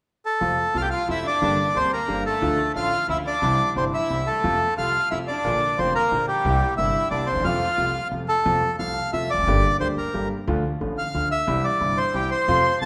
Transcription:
0.26 bandoneon A4
0.41 grand piano F2 C3 F3 A3 F4, upright bass F2
0.74 grand piano C2 C3 F3 A3 F4, upright bass C2, violin section F4, bandoneon F5
0.82 violin section G4, bandoneon G5
0.91 violin section F4, bandoneon F5
1.08 grand piano F2 C3 F3 A3 F4, upright bass F2, violin section E4, bandoneon E5
1.26 violin section D4, bandoneon D5
1.42 upright bass G1, grand piano G1 G2 D3 G3 A#3 G4
1.75 grand piano D2 D3 G3 A#3 G4, upright bass D2, violin section C4, bandoneon C5
1.93 violin section A#3, bandoneon A#4
2.08 grand piano G1 G2 D3 G3 A#3 G4, upright bass G1
2.26 violin section A3, bandoneon A4
2.42 upright bass D2, grand piano D2 D3 F3 A3 F4
2.75 grand piano A1 A2 D3 F3 A3 F4, upright bass A1, violin section F4, bandoneon F5
3.08 upright bass D2, grand piano D2 D3 F3 A3 F4, violin section E4, bandoneon E5
3.27 violin section D4, bandoneon D5
3.42 upright bass C2, grand piano C2 C3 E3 G3 E4
3.76 upright bass G1, grand piano G1 G2 C3 E3 G3 E4, violin section C4, bandoneon C5
3.94 violin section E4, bandoneon E5
4.10 upright bass C2, grand piano C2 C3 E3 G3 E4
4.27 violin section A3, bandoneon A4
4.44 upright bass F2, grand piano F2 C3 F3 A3 F4
4.78 grand piano C2 C3 F3 A3 F4, upright bass C2, violin section F4, bandoneon F5
5.11 grand piano F2 C3 F3 A3 F4, upright bass F2, violin section E4, bandoneon E5
5.28 violin section D4, bandoneon D5
5.44 grand piano A#1 A#2 D3 F3 A#3 F4, upright bass A#1
5.78 upright bass F1, grand piano F1 F2 D3 F3 A#3 F4, violin section C4, bandoneon C5
5.95 violin section A#3, bandoneon A#4
6.11 upright bass A#1, grand piano A#1 A#2 D3 F3 A#3 F4
6.28 violin section G3, bandoneon G4
6.45 upright bass C2, grand piano C2 C3 G3 A#3 E4
6.77 upright bass G1, grand piano G1 G2 C3 G3 A#3 E4, violin section E4, bandoneon E5
7.11 upright bass C2, grand piano C2 C3 G3 A#3 E4, violin section D4, bandoneon D5
7.27 violin section C4, bandoneon C5
7.32 upright bass D2, grand piano D2
7.36 upright bass D#2, grand piano D#2
7.40 upright bass E2 F2, grand piano E2 C3, bandoneon F5
7.45 grand piano F2 F3 A3 F4, violin section F4
7.78 grand piano C2 C3 F3 A3 F4, upright bass C2
8.11 grand piano F2 C3 F3 A3 F4, upright bass F2
8.28 bandoneon A4
8.45 upright bass F2, grand piano F2 C3 F3 A3 F4
8.79 upright bass C2, grand piano C2 C3 F3 A3 F4, bandoneon F5
9.13 upright bass F2, grand piano F2 C3 F3 A3 F4, bandoneon E5
9.30 upright bass E1, bandoneon D5
9.35 upright bass F1, grand piano E2
9.40 upright bass F#1, grand piano F2 F#2
9.47 upright bass G1, grand piano G1 G2 D3 G3 A#3 G4
9.80 upright bass D2, grand piano D2 D3 G3 A#3 G4, bandoneon C5
9.98 bandoneon A#4
10.14 upright bass G1, grand piano G1 G2 D3 G3 A#3 G4
10.47 upright bass D2, grand piano D2 D3 F3 A3 F4
10.81 upright bass A1, grand piano A1 A2 D3 F3 A3 F4
10.98 bandoneon F5
11.14 upright bass D2, grand piano D2 D3 F3 A3 F4
11.31 bandoneon E5
11.47 grand piano C2 C3 E3 G3 E4, upright bass C2
11.64 bandoneon D5
11.81 upright bass G1, grand piano G1 G2 C3 E3 G3 E4
11.97 bandoneon C5, violin section C6
12.14 grand piano C2 C3 E3 G3 E4, upright bass C2, bandoneon G4, violin section G5
12.31 bandoneon C5, violin section C6
12.48 upright bass F2, grand piano F2 C3 F3 A3 F4
12.81 upright bass C2, grand piano C2 C3 F3 A3 F4, bandoneon A5, violin section A6

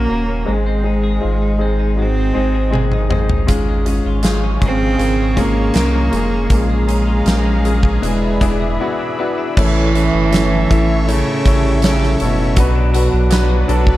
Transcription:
Already playing: clean electric guitar F#2 F#3 C#4 F#4, grand piano C#3 A#3 C#4 F#4 G#4 A#4, cello A#3
0.08 sub bass D#1, grand piano A#3 C#4 F#4 A#4, clean electric guitar A#3
0.28 clean electric guitar C#4
0.45 sub bass G#1, grand piano G#2 D#3 G#3 C4 D#4 G#4, clean electric guitar G#2, cello G#3
0.66 clean electric guitar C4
0.83 grand piano G#3 C4 D#4 G#4, clean electric guitar D#4
1.04 clean electric guitar G#4
1.20 grand piano G#3 C4 D#4 F4, clean electric guitar G#3
1.24 sub bass G#1
1.42 clean electric guitar D#4
1.58 grand piano G#3 C4 D#4 G#4, clean electric guitar C4
1.79 clean electric guitar D#4
1.96 clean electric guitar G#2, grand piano G#3 C4 D#4 F#4
2.02 cello C4
2.17 clean electric guitar C4
2.34 sub bass G#1, grand piano G#3 C4 D#4 G#4, clean electric guitar D#4
2.55 clean electric guitar G#4
2.71 grand piano G#3 C4 D#4 G#4, clean electric guitar G#3, high tom
2.92 clean electric guitar D#4, mid tom
3.09 grand piano G#3 C4 D#4 G#4, clean electric guitar C4, mid tom
3.29 clean electric guitar D#4, floor tom
3.47 sub bass G#1, grand piano G#2 G#3 C#4 F4 G#4, clean electric guitar G#2, analog synth pad G#4 F5 C#6, kick, closed hi-hat
3.68 clean electric guitar G#3
3.85 grand piano G#3 C#4 F4 G#4, clean electric guitar C#4, closed hi-hat
4.06 sub bass G#1, clean electric guitar F4
4.22 clean electric guitar F3, grand piano G#3 C#4 F4 G#4, snare, closed hi-hat
4.44 clean electric guitar C#4
4.60 sub bass G#1, grand piano C#3 G#3 F4 G#4, clean electric guitar G#3, kick, closed hi-hat
4.66 cello C4
4.98 sub bass G#1, clean electric guitar G#2, grand piano C#3 G#3 F4 A#4, closed hi-hat
5.20 clean electric guitar G#3
5.36 grand piano G#3 C#4 F4 G#4, cello A#3, clean electric guitar C#4, kick, closed hi-hat
5.57 clean electric guitar F4
5.74 sub bass C2, clean electric guitar F3, grand piano G#3 C#4 F4 A#4, snare, closed hi-hat
5.94 clean electric guitar C#4
6.11 sub bass F1, grand piano G#3 C#4 F4 G#4, clean electric guitar G#3, closed hi-hat
6.31 clean electric guitar C#4
6.49 sub bass A#1, clean electric guitar A#2, grand piano A#2 F3 A#3 C#4 F4 G#4, analog synth pad G#4 F5 A#5, kick, closed hi-hat
6.53 cello G#3
6.69 clean electric guitar G#3
6.86 grand piano A#3 C#4 F4 G#4, clean electric guitar C#4, closed hi-hat
7.08 clean electric guitar F4
7.25 sub bass A#1, clean electric guitar F3, grand piano A#3 C#4 F4 A#4, snare, closed hi-hat
7.46 clean electric guitar C#4
7.64 clean electric guitar G#3, grand piano A#3 C#4 F4 G#4, closed hi-hat
7.83 clean electric guitar C#4, kick
8.02 sub bass E1, grand piano B2 B3 D4 E4 G#4, clean electric guitar E3, cello G#3, analog synth pad D5 E5 B5, closed hi-hat
8.22 clean electric guitar B3
8.41 sub bass E1, grand piano B3 D4 E4 G#4, clean electric guitar D4, kick, closed hi-hat
8.60 clean electric guitar G#4
8.80 grand piano B3 D4 E4 F#4, clean electric guitar B3
8.99 clean electric guitar D4
9.19 grand piano B3 D4 E4 F#4, clean electric guitar B3
9.38 clean electric guitar D4
9.56 sub bass A1, clean electric guitar A2, grand piano A2 E3 A3 C#4 E4 A4 C#5, french horn section E3 E4, cello E3, analog synth pad A4 C#5 E5 C#6, kick, crash
9.76 clean electric guitar E4
9.94 grand piano A3 C#4 E4 A4 E5, clean electric guitar A4, closed hi-hat
10.14 sub bass G1, clean electric guitar E4
10.31 grand piano A3 C#4 E4 A4 C#5, clean electric guitar C#4, snare, closed hi-hat
10.52 clean electric guitar A4
10.70 sub bass A1, grand piano A3 C#4 E4 A4 E5, clean electric guitar E4, kick, closed hi-hat
10.89 clean electric guitar C#4
11.07 clean electric guitar A2, cello C#3, grand piano A3 C#4 E4 A4 C#5, closed hi-hat
11.27 clean electric guitar E4
11.45 sub bass A1, french horn section G3 G4, grand piano A3 C#4 E4 A4 C#5, clean electric guitar A4, kick, closed hi-hat
11.64 clean electric guitar E4
11.82 cello C#3, grand piano A3 C#4 E4 A4 C#5, clean electric guitar C#4, snare, closed hi-hat
12.00 clean electric guitar A4, snare
12.20 sub bass F#1, cello B2, grand piano A3 C#4 E4 A4 C#5, clean electric guitar E4, closed hi-hat
12.39 clean electric guitar C#4
12.56 sub bass B1, clean electric guitar B2, grand piano B2 F#3 B3 D4 F#4 B4, french horn section F#3 F#4, analog synth pad D4 B4 F#5, kick, closed hi-hat
12.75 clean electric guitar D4
12.94 grand piano F#3 B3 D4 F#4 A4, clean electric guitar F#4, closed hi-hat
13.12 sub bass B1, clean electric guitar D4
13.30 grand piano F#3 B3 D4 F#4 B4, clean electric guitar B3, snare, closed hi-hat
13.49 clean electric guitar F#4
13.68 sub bass B1, grand piano F#3 B3 D4 F#4 A4, clean electric guitar D4, closed hi-hat
13.87 clean electric guitar B3, kick

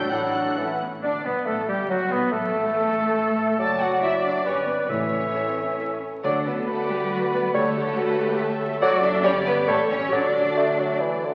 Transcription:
Already playing: double bass section A1, timpani A2, cello section A2, bassoon F#3, clarinet D4, viola section D4 F#4, oboe A4, flute section G5, violin section G5 G6
0.11 bassoon F#3, viola section D4 F#4, clarinet E4, oboe A4, violin section F#5 F#6, flute section F#5
0.36 clarinet D4
0.58 double bass section A1, cello section A2, bassoon E3, french horn section A3 C#4, viola section C#4 E4, clarinet C#4, oboe A4
0.81 clarinet B3
1.02 double bass section D2, oboe D4, bassoon D4, viola section D4, cello section D4, violin section D4 D5, clarinet D4, french horn section D4, flute section D5
1.24 double bass section B1, oboe B3, bassoon B3, clarinet B3, violin section B3 B4, viola section B3, cello section B3, french horn section B3, flute section B4
1.46 double bass section A1, bassoon A3, violin section A3 A4, cello section A3, viola section A3, clarinet A3, french horn section A3, oboe A4, flute section A4
1.68 double bass section G1, viola section G3, violin section G3 G4, clarinet G3, cello section G3, bassoon G3, french horn section G3, oboe G4
1.89 double bass section F#1, french horn section F#3, bassoon F#3, viola section F#3, clarinet F#3, cello section F#3, violin section F#4, flute section F#4, oboe F#4
2.11 double bass section B1, viola section B3, bassoon B3, clarinet B3, cello section B3, french horn section B3, violin section B3 B4, oboe B3, flute section B4
2.32 double bass section A1, bassoon A3, french horn section A3, viola section A3, cello section A3, violin section A3 A4, clarinet A3, flute section A4, oboe A4
3.59 double bass section F#1, bassoon F#3, french horn section F#4 D5, clarinet F#4, cello section A4, oboe D5, flute section A5, violin section A5
3.80 cello section F#4, flute section F#5, violin section F#5
4.01 cello section E4, viola section F#4 D5, flute section E5, violin section E5 A5
4.23 cello section D4, flute section D5, violin section D5
4.44 double bass section G1, bassoon G3, cello section C#4, french horn section G4, clarinet B4, viola section B4 D5, flute section C#5, violin section C#5 G5
4.67 cello section B3, flute section B4, violin section B4
4.88 double bass section A1, timpani A2, bassoon E3, cello section C#4, french horn section E4 A4, clarinet A4, flute section C#5, violin section C#5, oboe E5
5.34 viola section A4, violin section E5
5.79 viola section A4, violin section E5
6.24 double bass section D2, timpani D3, bassoon F#3, cello section D4, french horn section F#4, clarinet A4, viola section A4, violin section D5 F#5, oboe D5, flute section D5
6.46 cello section B3, violin section B4, flute section B4
6.68 cello section A3, flute section A4, violin section A4 F#5, viola section B4 D5
6.89 cello section G3, flute section G4, violin section G4
7.11 cello section F#3, flute section F#4, violin section F#4
7.32 cello section B3, flute section B4, violin section B4
7.54 timpani D3, bassoon G3, cello section A3, french horn section G4 C#5, flute section A4, violin section A4 F#5, viola section A4 C#5, clarinet A4, oboe C#5
7.76 viola section G4
7.98 viola section F#4 B4
8.20 viola section G4
8.40 viola section A4, violin section E5
8.81 double bass section F#1, bassoon F#3, french horn section F#4 D5, cello section F#4, clarinet A4, viola section A4 D5, oboe D5, violin section F#5, flute section F#5
9.03 cello section D4, flute section D5, violin section D5 E5
9.24 double bass section G1, bassoon G3, cello section C#4, french horn section G4 D5, clarinet G4, viola section G4 D5, violin section C#5 D5, flute section C#5, oboe D5
9.46 cello section B3, flute section B4, violin section B4
9.66 double bass section A1, bassoon G3, cello section A3, viola section G4 A4, french horn section G4 C#5, violin section A4 C#5, clarinet A4, flute section A4, oboe C#5
9.89 cello section C#4, violin section C#5, flute section C#5
10.12 double bass section D2, bassoon F#3, cello section D4, french horn section F#4 D5, viola section F#4 A4, clarinet A4, violin section D5, oboe D5, flute section D5
10.57 bassoon A3
10.79 bassoon F#3
11.01 bassoon E3
11.24 bassoon D3

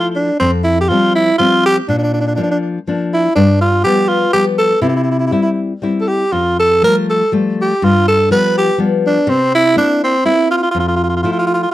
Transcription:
Already playing: nylon-string guitar F3 A3 E4
0.00 tenor saxophone F4
0.16 tenor saxophone D4
0.40 nylon-string guitar F2, tenor saxophone C4
0.64 tenor saxophone E4
0.81 tenor saxophone G4
0.89 nylon-string guitar F3 G3 C4, tenor saxophone F4
1.15 tenor saxophone E4
1.38 nylon-string guitar F3 G3 C4, tenor saxophone F4
1.66 tenor saxophone G4
1.88 nylon-string guitar A#2, tenor saxophone D4
1.98 tenor saxophone D4
2.03 tenor saxophone D4
2.14 tenor saxophone D4
2.21 tenor saxophone D4
2.27 tenor saxophone D4
2.36 nylon-string guitar F3 A#3 D4, tenor saxophone D4
2.43 tenor saxophone D4
2.51 tenor saxophone D4
2.87 nylon-string guitar F3 A#3 D4
3.14 tenor saxophone E4
3.35 nylon-string guitar G2, tenor saxophone D4
3.61 tenor saxophone F4
3.84 nylon-string guitar F3 G3 B3, tenor saxophone G4
4.08 tenor saxophone F4
4.33 nylon-string guitar F3 G3 B3, tenor saxophone G4
4.58 tenor saxophone A4
4.81 nylon-string guitar C3, tenor saxophone E4
4.89 tenor saxophone E4
4.96 tenor saxophone E4
5.04 tenor saxophone E4
5.11 tenor saxophone E4
5.19 tenor saxophone E4
5.27 tenor saxophone E4
5.31 nylon-string guitar G3 C4 E4, tenor saxophone E4
5.42 tenor saxophone E4
5.82 nylon-string guitar G3 C4 E4
6.01 tenor saxophone A4
6.08 tenor saxophone G4
6.32 nylon-string guitar F2, tenor saxophone F4
6.59 tenor saxophone A4
6.82 nylon-string guitar F3 G3 A3, tenor saxophone A#4
7.10 tenor saxophone A4
7.32 nylon-string guitar F3 G3 A3
7.62 tenor saxophone G4
7.82 nylon-string guitar G2, tenor saxophone F4
8.08 tenor saxophone A4
8.31 nylon-string guitar F3 G3 B3, tenor saxophone B4
8.58 tenor saxophone G4
8.78 nylon-string guitar F3 G3 B3
9.07 tenor saxophone D4
9.27 nylon-string guitar C3, tenor saxophone C4
9.55 tenor saxophone E4
9.76 nylon-string guitar A#3 C4 E4, tenor saxophone D4
10.04 tenor saxophone C4
10.25 nylon-string guitar A#3 C4 E4, tenor saxophone E4
10.51 tenor saxophone F4
10.57 tenor saxophone F4
10.63 tenor saxophone F4
10.71 nylon-string guitar F2, tenor saxophone F4
10.80 tenor saxophone F4
10.88 tenor saxophone F4
10.96 tenor saxophone F4
11.04 tenor saxophone F4
11.10 tenor saxophone F4
11.16 tenor saxophone F4
11.23 nylon-string guitar F3 A3 E4, tenor saxophone F4
11.32 tenor saxophone F4
11.39 tenor saxophone F4
11.47 tenor saxophone F4
11.54 tenor saxophone F4
11.63 tenor saxophone F4

